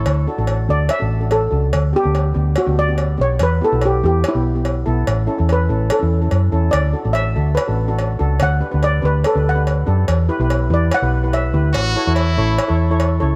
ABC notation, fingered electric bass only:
X:1
M:4/4
L:1/16
Q:1/4=144
K:D
V:1 name="Fingered electric bass" clef=bass
D,,2 z A,,,3 D,,2 z A,,,4- A,,, C,,2 | D,,2 z D,,3 D,,2 z D,,4- D,, B,,,2 | E,,2 z B,,,3 E,,2 z B,,,4- B,,, B,,,2 | A,,,2 z E,,3 A,,,2 z E,,3 F,,2 E,,2 |
D,,2 z A,,,3 D,,2 z A,,,4- A,,, C,,2 | D,,2 z D,,3 D,,2 z D,,4- D,, F,,2 | E,,2 z B,,,3 E,,2 z B,,,4- B,,, D,,2 | A,,,2 z E,,3 A,,,2 z E,,4- E,, C,,2 |]